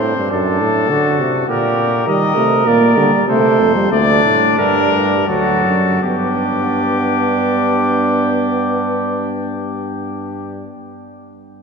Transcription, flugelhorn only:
Already playing: C4
0.31 D4
0.91 F#4
1.48 G4
2.07 A#4
3.28 A4
3.91 D4
5.28 F#4
6.03 D4

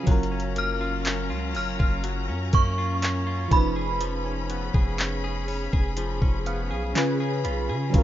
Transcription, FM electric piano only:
0.03 F#3 C#4
0.09 F4 A#4
3.48 F3 C#4
3.53 D#4 B4
6.47 F5
6.94 C#3 C#4 F4 G#5
6.98 B4
7.44 B5
7.90 F#3 C#4
7.95 F4 A#4

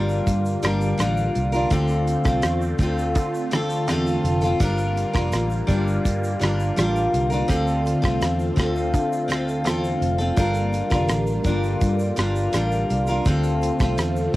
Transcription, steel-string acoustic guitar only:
Already playing: G3 D4 F4 A#4
0.63 G3 D4 F4 A#4
0.98 G3 D4 F4 A#4
1.52 D4 F4 A#4
1.71 D3 C4 F4 A4
2.25 C4 F4 A4
2.80 D3 C4 F4 A4
3.51 D3 C4 F4 A4
3.88 D3 C4 F4 A4
4.42 C4 F4 A4
4.60 G3 D4 F4 A#4
5.13 D4 F4 A#4
5.67 G3 D4 F4 A#4
6.39 G3 D4 F4 A#4
6.76 G3 D4 F4 A#4
7.30 D4 F4 A#4
7.48 D3 C4 F4 A4
8.02 C4 F4 A4
8.56 D3 C4 F4 A4
9.28 D3 C4 F4 A4
9.64 D3 C4 F4 A4
10.18 C4 F4 A4
10.37 G3 D4 F4 A#4
10.90 D4 F4 A#4
11.44 G3 D4 F4
11.48 A#4
12.16 G3 D4 F4 A#4
12.53 G3 D4 F4 A#4
13.08 D4 F4 A#4
13.26 D3 C4 F4 A4
13.80 C4 F4 A4

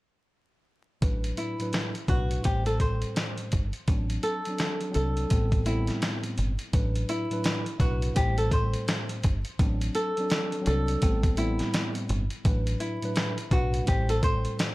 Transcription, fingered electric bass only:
1.02 A1
2.09 B1
2.45 A1
3.53 G1
3.88 A1
4.96 C2
5.31 A1
6.38 G1
6.74 A1
7.80 B1
8.17 A1
9.25 G1
9.60 A1
10.67 C2
11.03 A1
12.10 G1
12.45 A1
13.52 B1
13.88 A1

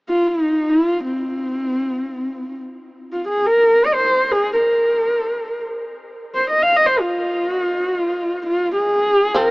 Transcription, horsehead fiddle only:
0.09 F4
0.27 D#4
0.70 F4
1.07 C4
3.12 F4
3.28 G#4
3.47 A#4
3.86 D#5
3.94 C5
4.32 G#4
4.54 A#4
6.35 C5
6.50 D#5
6.63 F5
6.76 D#5
6.86 C5
7.01 F4
7.52 F#4
7.65 F4
7.80 F#4
7.94 F4
8.46 F4
8.75 G#4
9.37 A#4

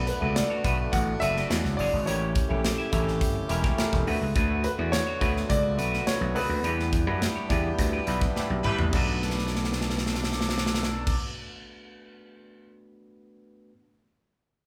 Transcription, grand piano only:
0.07 B4
0.36 D5
0.92 F#5
1.20 E5
1.77 D5
2.06 C#5
4.64 B4
4.92 C#5
5.50 D5
6.07 C#5
6.35 B4

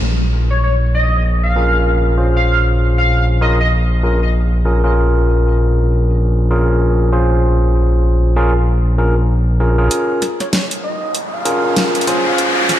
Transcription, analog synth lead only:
0.50 C#5
0.63 C#5
0.94 D#5
1.43 F5
2.36 F5
2.98 F5
3.42 D#5
3.60 D#5
10.40 C#5
10.53 C#5
10.84 D#5
11.33 F5
12.26 F5

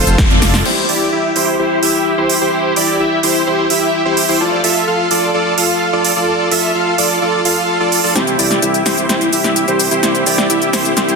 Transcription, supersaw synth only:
0.07 F4 A4 C5
0.19 F4 A4 C5
0.30 F4 A4 D5
0.42 F4 A4 D5
0.65 E4 G4 C5
0.89 E4 G4 D5
1.12 E4 G4 E5
1.36 E4 G4 C5
1.59 E4 G4 C5
1.83 E4 G4 E5
2.18 E4 G4 C5
2.41 E4 G4 C5
2.53 E4 G4 C5
2.76 E4 G4 D5
3.00 E4 G4 E5
3.23 E4 G4 C5
3.47 E4 G4 C5
3.70 E4 G4 E5
4.05 E4 G4 C5
4.29 E4 G4 C5
4.40 F4 A4 D5
4.64 F4 A4 E5
4.87 F4 A4 F5
5.11 F4 A4 D5
5.34 F4 A4 D5
5.58 F4 A4 F5
5.93 F4 A4 D5
6.16 F4 A4 D5
6.28 F4 A4 D5
6.51 F4 A4 E5
6.75 F4 A4 F5
6.98 F4 A4 D5
7.22 F4 A4 D5
7.45 F4 A4 F5
7.80 F4 A4 D5
8.04 F4 A4 D5
8.15 E4 G4 C5
8.39 E4 G4 D5
8.62 E4 G4 E5
8.86 E4 G4 C5
9.09 E4 G4 C5
9.33 E4 G4 E5
9.68 E4 G4 C5
9.91 E4 G4 C5
10.03 E4 G4 C5
10.26 E4 G4 D5
10.50 E4 G4 E5
10.73 E4 G4 C5
10.97 E4 G4 C5

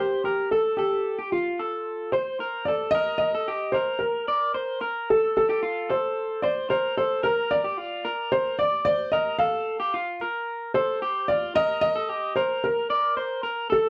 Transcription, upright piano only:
0.00 G4
0.24 G4
0.51 A4
0.77 G4
1.32 F4
2.12 C5
2.65 D5
2.91 D#5
3.18 D#5
3.72 C5
3.99 A#4
5.10 A4
5.37 A4
5.90 C5
6.42 D5
6.70 C5
6.97 C5
7.24 A#4
7.51 D5
8.32 C5
8.59 D5
8.85 D5
9.12 D#5
9.39 F5
10.74 C5
11.28 D5
11.56 D#5
11.81 D#5
12.36 C5
12.64 A#4
13.72 A4

